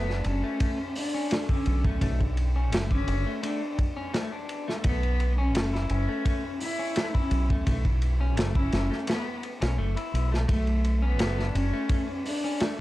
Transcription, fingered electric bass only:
0.00 0.21 F#1 medium
0.25 0.42 F#1 medium
1.67 1.98 B1 medium
2.01 2.72 B1 medium
2.72 3.04 F#1 medium
3.08 3.24 F#1 medium
4.85 5.55 B1 medium
5.55 5.86 F#1 medium
5.90 6.06 F#1 medium
7.31 7.62 B1 medium
7.67 8.37 B1 medium
8.37 8.68 F#1 medium
8.73 8.89 F#1 medium
9.62 9.76 B1 medium
9.78 9.95 F#1 medium
10.14 10.45 B1 medium
10.49 11.20 B1 medium
11.20 11.51 F#1 medium
11.55 11.71 F#1 medium

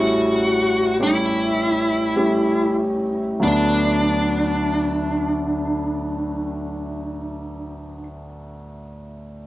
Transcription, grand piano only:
0.00 3.38 A1 medium
0.00 3.38 A2 medium
0.00 1.00 G3 medium
0.00 1.00 A3 medium
0.00 1.00 C#4 medium
0.00 3.43 E4 medium
1.00 2.11 G3 soft
1.00 2.11 A3 soft
1.00 2.11 C#4 soft
1.00 2.11 G4 medium
2.16 3.34 G3 soft
2.16 3.34 A3 soft
2.16 3.35 C#4 soft
2.16 3.35 G4 soft
3.40 8.03 D2 soft
3.40 8.00 F#3 soft
3.40 8.02 A3 soft
3.40 8.03 B3 soft
3.44 8.05 D4 medium

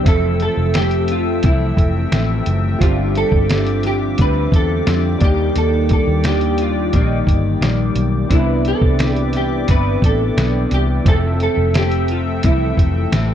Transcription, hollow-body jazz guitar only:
0.08 0.41 A4 loud
0.42 0.77 A4 medium
0.77 1.11 G4 medium
1.11 1.45 F4 medium
1.46 2.44 E4 medium
2.83 3.17 F4 medium
3.17 3.86 A4 loud
3.87 3.95 G4 loud
4.21 4.55 B4 loud
4.56 5.24 A4 medium
5.24 5.55 G4 loud
5.58 5.92 A4 loud
5.93 6.24 A4 medium
6.27 6.61 G4 medium
6.62 6.96 F4 medium
6.96 7.94 D#4 medium
8.33 8.67 E4 medium
8.68 9.15 A4 loud
9.15 9.31 G4 loud
9.37 9.70 G4 medium
9.71 10.02 B4 loud
10.05 10.74 A4 medium
10.74 10.83 G4 loud
11.08 11.17 A4 loud
11.43 11.77 A4 loud
11.77 12.08 G4 medium
12.11 12.20 F4 medium
12.46 13.34 E4 medium

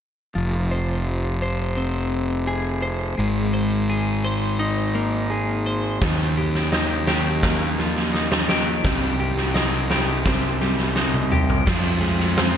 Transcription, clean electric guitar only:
0.35 2.13 F3 soft
0.71 1.41 C5 soft
1.42 2.81 C5 medium
1.77 3.19 C4 soft
2.47 3.19 G#4 medium
2.82 3.18 C5 medium
3.18 4.95 G#3 medium
3.54 4.23 C5 soft
3.89 5.29 G#4 medium
4.25 5.65 C5 medium
4.59 6.72 D#4 medium
4.95 6.01 A#3 medium
5.30 6.01 G#4 soft
5.66 6.02 C5 soft
6.01 7.78 D#3 medium
6.37 7.07 G4 medium
6.72 8.12 D#4 soft
7.07 8.48 G4 medium
7.44 8.85 A#3 medium
7.79 8.85 F3 medium
8.13 8.84 D#4 medium
8.49 9.19 G4 medium
8.84 10.61 C3 medium
9.20 9.89 G4 medium
9.54 10.95 D#4 medium
9.90 11.30 G4 medium
10.26 11.67 C4 medium
10.61 11.66 G3 medium
10.96 11.67 D#4 medium
11.32 11.67 G4 medium
11.67 12.57 F3 medium
12.01 12.57 G#3 medium
12.37 12.57 C4 medium

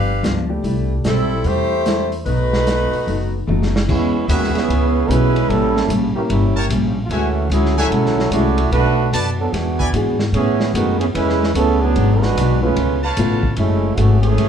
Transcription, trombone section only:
3.89 4.26 G#3 medium
3.89 4.26 B3 medium
3.89 4.26 C#4 medium
3.89 4.26 E4 medium
4.29 4.52 D#3 medium
4.29 4.53 G#3 medium
4.29 4.53 B3 medium
4.29 4.53 F#4 medium
4.55 5.09 E3 medium
4.55 5.09 B3 medium
4.55 5.08 C#4 medium
4.55 5.09 G#4 medium
5.09 5.49 G#3 medium
5.09 5.49 C#4 medium
5.09 5.49 E4 medium
5.09 5.49 B4 loud
5.50 5.90 G3 medium
5.50 5.90 C#4 medium
5.50 5.90 E4 medium
5.50 5.90 A4 loud
6.15 6.22 E3 medium
6.15 6.22 A#3 medium
6.15 6.22 C#4 medium
6.15 6.22 G4 medium
6.29 6.67 G3 medium
6.29 6.67 A#3 medium
6.29 6.67 C#4 medium
6.29 6.67 E4 medium
7.05 7.10 F4 medium
7.11 7.52 E3 medium
7.11 7.51 A3 medium
7.11 7.51 C#4 medium
7.11 7.51 F#4 loud
7.51 7.75 F#3 medium
7.51 7.76 C#4 medium
7.51 7.75 E4 medium
7.51 7.76 G#4 medium
7.79 8.33 F#3 medium
7.79 8.33 C#4 medium
7.79 8.31 E4 medium
7.79 8.33 A4 medium
8.32 8.72 A3 medium
8.32 8.72 E4 medium
8.32 8.72 F#4 medium
8.32 8.72 D5 loud
8.73 9.10 A3 medium
8.73 9.10 D4 medium
8.73 9.10 F#4 loud
8.73 9.10 B4 loud
9.40 9.53 F#3 medium
9.40 9.53 B3 medium
9.40 9.53 D4 medium
9.40 9.53 A4 medium
9.56 9.95 E3 medium
9.56 9.95 B3 medium
9.56 9.95 D4 medium
9.56 9.95 F#4 medium
10.35 10.72 E3 medium
10.35 10.72 B3 medium
10.35 10.72 C#4 medium
10.35 10.72 G#4 medium
10.74 10.99 D#3 medium
10.74 10.98 G#3 medium
10.74 10.98 B3 medium
10.74 10.98 F#4 medium
10.99 11.07 E3 medium
10.99 11.07 B3 medium
10.99 11.07 C#4 medium
10.99 11.06 G#4 medium
11.15 11.53 G#3 medium
11.15 11.52 C#4 medium
11.15 11.52 E4 medium
11.15 11.52 B4 loud
11.55 11.79 E3 medium
11.55 11.79 B3 medium
11.55 11.79 C#4 medium
11.55 11.79 A4 medium
11.81 12.21 F#3 medium
11.81 12.21 B3 medium
11.81 12.21 D4 medium
11.81 12.21 G#4 loud
12.21 12.62 G#3 medium
12.21 12.62 D4 medium
12.21 12.62 F#4 medium
12.21 12.62 B4 loud
12.63 13.00 G#3 medium
12.63 13.00 C#4 medium
12.63 13.00 F4 medium
12.63 13.00 B4 medium
13.58 13.95 G#3 medium
13.58 13.95 A3 medium
13.58 13.94 C#4 medium
13.58 13.95 E4 medium
13.95 14.20 E3 medium
13.95 14.20 A3 medium
13.95 14.21 C#4 medium
13.95 14.22 F#4 medium
14.21 14.49 E3 medium
14.21 14.49 A3 medium
14.21 14.49 C#4 medium
14.21 14.49 G#4 medium

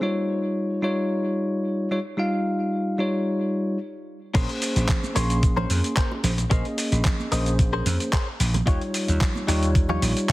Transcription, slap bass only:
4.35 4.45 A#1 loud
4.76 4.85 A#1 medium
5.16 5.64 A#1 medium
5.70 5.80 F2 medium
6.24 6.43 A#1 medium
6.51 6.61 A#1 loud
6.92 7.01 A#1 medium
7.32 7.80 A#1 medium
7.86 7.96 F2 medium
8.40 8.60 A#1 medium
8.67 8.77 D#2 loud
9.09 9.18 D#2 medium
9.48 9.96 D#2 medium
10.02 10.12 A#1 medium

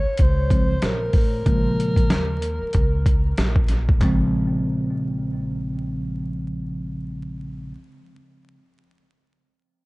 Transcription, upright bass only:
0.05 muted upright bass stroke soft
0.19 0.79 C#2 medium
0.82 1.12 A#1 medium
1.14 1.44 A1 medium
1.46 2.06 A#1 medium
2.10 2.58 D#2 medium
2.61 muted upright bass stroke soft
2.75 3.34 C#2 medium
3.38 3.98 A#1 medium
4.01 7.73 A#1 medium

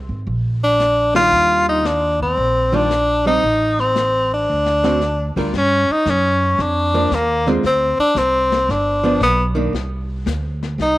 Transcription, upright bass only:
0.09 0.25 G#1 medium
0.27 1.28 A#1 medium
1.32 2.33 D#2 medium
2.37 3.39 A#1 medium
3.43 4.44 A1 medium
4.50 5.33 D2 medium
5.36 5.52 D2 medium
5.53 5.86 G2 medium
5.89 muted upright bass stroke soft
6.06 6.57 F#2 medium
6.58 7.10 F2 medium
7.11 7.62 D#2 medium
7.63 7.97 D2 medium
7.99 muted upright bass stroke soft
8.15 8.67 C2 medium
8.68 9.20 G1 medium
9.21 9.72 B1 medium
9.73 10.25 C2 medium
10.26 10.77 D2 medium
10.78 10.98 C2 medium

